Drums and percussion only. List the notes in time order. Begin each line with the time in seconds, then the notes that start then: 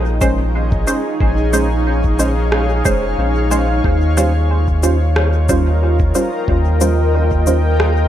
0.21 kick, shaker
0.72 kick
0.87 shaker
1.20 kick
1.53 shaker
2.04 kick
2.19 shaker
2.52 cross-stick
2.85 kick, shaker
3.51 shaker
3.84 kick
4.17 shaker
4.68 kick
4.83 shaker
5.16 cross-stick
5.49 kick, shaker
6.00 kick
6.15 shaker
6.48 kick
6.81 shaker
7.32 kick
7.47 shaker
7.80 cross-stick